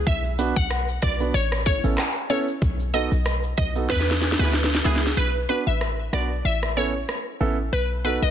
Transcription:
0.07 0.52 B1 loud
0.07 0.22 E5 medium
0.07 kick loud
0.07 shaker medium
0.24 shaker medium
0.39 0.53 B3 medium
0.39 0.53 D4 medium
0.39 0.53 F#4 medium
0.39 0.53 B4 medium
0.39 closed hi-hat medium
0.39 shaker medium
0.56 0.98 B1 loud
0.56 0.68 F#5 medium
0.56 kick medium
0.56 shaker medium
0.70 cross-stick loud
0.70 shaker medium
0.88 shaker medium
1.02 1.31 B1 loud
1.02 1.10 F#4 soft
1.02 1.10 B4 medium
1.02 1.18 D5 medium
1.02 kick medium
1.02 cross-stick loud
1.02 closed hi-hat medium
1.02 shaker soft
1.20 1.32 B3 medium
1.20 1.32 D4 medium
1.20 1.32 F#4 medium
1.20 1.32 B4 medium
1.20 shaker medium
1.34 1.80 A1 loud
1.34 1.49 C#5 medium
1.34 shaker medium
1.52 cross-stick loud
1.52 shaker medium
1.66 1.73 E4 soft
1.66 1.73 A4 medium
1.66 1.81 C#5 medium
1.66 kick medium
1.66 closed hi-hat medium
1.66 shaker medium
1.84 1.97 A1 medium
1.84 1.95 B3 medium
1.84 1.95 C#4 medium
1.84 1.95 E4 medium
1.84 1.95 A4 medium
1.84 shaker medium
1.98 cross-stick loud
1.98 clap loud
1.98 shaker medium
2.16 shaker medium
2.30 2.44 B3 medium
2.30 2.44 C#4 medium
2.30 2.44 E4 medium
2.30 2.44 A4 medium
2.30 2.45 C#5 medium
2.30 closed hi-hat medium
2.30 shaker medium
2.48 shaker medium
2.62 3.08 B1 loud
2.62 kick loud
2.62 shaker medium
2.80 shaker medium
2.94 3.08 B3 medium
2.94 3.08 D#4 medium
2.94 3.08 F#4 medium
2.94 3.08 A4 medium
2.94 3.09 D#5 medium
2.94 closed hi-hat medium
2.94 shaker medium
3.12 3.54 B1 loud
3.12 shaker medium
3.26 cross-stick loud
3.26 shaker medium
3.43 shaker medium
3.57 3.87 B1 loud
3.57 3.65 F#4 soft
3.57 3.65 B4 soft
3.57 3.73 D#5 medium
3.57 kick medium
3.57 closed hi-hat medium
3.57 shaker soft
3.57 shaker medium
3.75 3.87 B3 medium
3.75 3.87 D#4 medium
3.75 3.87 F#4 medium
3.75 3.87 A4 medium
3.75 shaker medium
3.90 4.35 E2 loud
3.90 4.05 B4 loud
3.90 kick medium
3.90 snare medium
3.90 shaker medium
4.00 snare medium
4.08 snare medium
4.08 shaker medium
4.21 4.29 G#4 soft
4.21 4.29 B4 soft
4.21 snare medium
4.21 closed hi-hat medium
4.21 shaker medium
4.32 snare medium
4.39 4.81 D2 medium
4.39 4.51 B3 medium
4.39 4.51 E4 medium
4.39 4.51 G#4 medium
4.39 4.51 B4 medium
4.39 snare medium
4.39 shaker medium
4.53 snare medium
4.53 shaker medium
4.64 snare medium
4.71 snare loud
4.71 shaker medium
4.85 5.14 C#2 medium
4.85 5.00 B3 medium
4.85 5.00 E4 medium
4.85 5.00 G#4 medium
4.85 5.00 B4 medium
4.85 snare medium
4.85 closed hi-hat medium
4.85 shaker medium
4.96 snare loud
5.03 snare medium
5.03 shaker medium
5.17 5.46 B1 loud
5.17 5.32 B4 loud
5.49 5.63 B3 medium
5.49 5.63 D4 medium
5.49 5.64 F#4 medium
5.49 5.64 B4 medium
5.67 6.09 A1 medium
5.67 5.94 E5 medium
5.81 cross-stick medium
6.13 6.42 B1 loud
6.13 6.27 B3 medium
6.13 6.27 D4 medium
6.13 6.27 F#4 medium
6.13 6.27 B4 medium
6.13 6.40 D5 medium
6.13 cross-stick medium
6.45 7.05 A1 loud
6.45 6.60 E5 medium
6.63 cross-stick medium
6.77 6.91 B3 medium
6.77 6.91 C#4 medium
6.77 6.91 E4 medium
6.77 6.91 A4 medium
6.77 6.92 C#5 medium
7.09 cross-stick medium
7.40 7.70 A1 medium
7.40 7.55 B3 medium
7.40 7.55 C#4 medium
7.40 7.55 E4 medium
7.40 7.55 A4 loud
7.73 8.18 B1 loud
7.73 7.88 B4 loud
8.04 8.19 B3 medium
8.04 8.19 D#4 medium
8.04 8.19 F#4 medium
8.04 8.19 A4 medium
8.04 8.20 B4 medium
8.04 closed hi-hat medium
8.22 8.31 B1 medium
8.22 8.31 D#5 medium

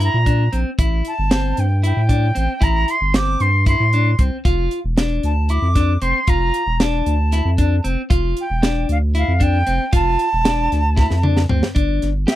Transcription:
0.00 0.17 E4 medium
0.00 0.57 A#5 medium
0.00 closed hi-hat medium
0.14 0.49 A#2 medium
0.26 0.43 D4 medium
0.26 kick medium
0.26 closed hi-hat soft
0.52 0.65 A#1 medium
0.52 0.69 C4 medium
0.52 closed hi-hat medium
0.79 1.02 A1 loud
0.79 1.13 E4 medium
0.79 kick loud
0.79 closed hi-hat medium
1.05 1.61 A5 medium
1.05 closed hi-hat medium
1.19 1.54 G1 loud
1.31 1.65 C4 medium
1.31 snare loud
1.31 closed hi-hat medium
1.57 1.93 G2 medium
1.57 1.84 G5 medium
1.57 closed hi-hat medium
1.83 2.00 E4 medium
1.83 2.64 G5 medium
1.83 closed hi-hat medium
1.97 2.32 A2 medium
2.09 2.26 D4 medium
2.09 kick medium
2.09 closed hi-hat medium
2.35 2.48 A1 medium
2.35 2.52 C4 medium
2.35 closed hi-hat medium
2.61 2.85 A1 loud
2.61 2.95 E4 medium
2.61 2.91 A#5 medium
2.61 kick medium
2.61 closed hi-hat medium
2.88 3.17 C6 medium
2.88 closed hi-hat medium
3.01 3.36 G1 medium
3.14 3.48 C4 medium
3.14 3.42 D6 medium
3.14 snare loud
3.14 closed hi-hat medium
3.40 3.76 G2 medium
3.40 3.67 C6 medium
3.40 closed hi-hat medium
3.66 3.83 E4 medium
3.66 4.22 C6 medium
3.66 kick medium
3.66 closed hi-hat medium
3.80 4.15 A2 medium
3.93 4.10 D4 medium
3.93 closed hi-hat medium
4.19 4.30 C2 medium
4.19 4.37 C4 medium
4.19 kick medium
4.19 closed hi-hat medium
4.45 4.69 F1 loud
4.45 4.79 F4 medium
4.45 kick medium
4.45 closed hi-hat medium
4.71 closed hi-hat medium
4.84 5.20 E1 loud
4.97 5.31 D4 medium
4.97 snare medium
4.97 closed hi-hat medium
5.23 5.59 D2 medium
5.23 5.51 A5 medium
5.23 closed hi-hat medium
5.49 5.67 E4 medium
5.49 6.03 D6 medium
5.49 closed hi-hat medium
5.62 5.98 F2 medium
5.75 5.92 D4 medium
5.75 kick medium
5.75 snare soft
5.75 closed hi-hat medium
6.02 6.14 F1 medium
6.02 6.19 C4 medium
6.02 6.30 C6 medium
6.02 closed hi-hat medium
6.27 6.52 F1 loud
6.27 6.62 F4 medium
6.27 6.83 A#5 medium
6.27 kick medium
6.27 closed hi-hat medium
6.54 closed hi-hat medium
6.67 7.02 E1 medium
6.80 7.14 D4 medium
6.80 7.85 A5 medium
6.80 snare medium
6.80 closed hi-hat medium
7.06 7.42 D2 medium
7.06 closed hi-hat medium
7.32 7.50 E4 medium
7.32 snare soft
7.32 closed hi-hat medium
7.45 7.81 F2 medium
7.58 7.75 D4 medium
7.58 kick medium
7.58 closed hi-hat medium
7.84 7.97 F1 medium
7.84 8.01 C4 medium
7.84 closed hi-hat medium
8.10 8.34 F1 medium
8.10 8.44 F4 medium
8.10 kick loud
8.10 closed hi-hat medium
8.37 8.87 G5 medium
8.37 closed hi-hat medium
8.50 8.85 E1 medium
8.62 8.96 D4 medium
8.62 snare loud
8.62 closed hi-hat medium
8.89 9.24 D2 medium
8.89 8.97 F5 medium
8.89 closed hi-hat medium
9.15 9.32 E4 medium
9.15 9.43 F5 medium
9.15 closed hi-hat medium
9.28 9.64 F2 medium
9.40 9.57 D4 medium
9.40 9.94 G5 loud
9.40 kick medium
9.40 closed hi-hat medium
9.67 9.79 F1 medium
9.67 9.84 C4 medium
9.67 closed hi-hat medium
9.93 10.17 F1 loud
9.93 10.27 F4 medium
9.93 11.47 A5 medium
9.93 kick loud
9.93 closed hi-hat medium
10.19 closed hi-hat medium
10.33 10.68 E1 loud
10.45 10.79 D4 medium
10.45 snare loud
10.45 closed hi-hat medium
10.72 11.07 D2 medium
10.72 snare soft
10.72 closed hi-hat medium
10.96 11.14 E4 medium
10.96 kick medium
10.96 snare medium
11.10 11.46 F2 medium
11.10 snare soft
11.23 11.41 D4 medium
11.23 mid tom medium
11.37 snare medium
11.49 11.62 D2 medium
11.49 11.67 C4 medium
11.49 floor tom medium
11.63 snare medium
11.75 12.00 G1 medium
11.75 12.09 D4 medium
11.75 kick medium
11.75 closed hi-hat medium
12.02 12.26 G1 medium
12.02 snare soft
12.02 closed hi-hat medium
12.27 12.36 G4 medium
12.27 12.36 E5 medium
12.27 snare loud
12.27 closed hi-hat medium

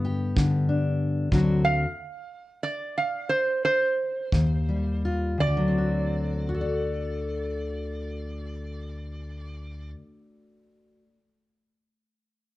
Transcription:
0.00 1.29 G2 medium
0.00 0.35 D3 medium
0.00 1.29 B3 medium
0.05 1.28 G4 medium
0.36 1.31 D3 medium
0.36 kick medium
0.69 1.29 D4 medium
1.31 1.83 D2 medium
1.31 1.84 D3 medium
1.31 1.65 F#3 medium
1.31 1.84 C4 medium
1.31 1.85 F#4 medium
1.31 kick medium
1.64 2.60 F5 medium
2.63 2.95 D5 medium
2.98 3.29 F5 medium
3.29 3.62 C5 medium
3.65 5.01 C5 medium
4.32 5.37 D#2 medium
4.32 kick medium
4.69 5.37 G3 medium
5.05 5.37 F4 medium
5.38 9.92 D2 medium
5.38 9.90 D5 loud
5.47 10.01 D3 medium
5.57 6.48 F#3 medium
5.68 6.54 C4 medium
5.78 6.49 F#4 soft
6.49 11.03 F#4 medium
6.54 11.08 A4 medium
6.61 11.15 D5 medium

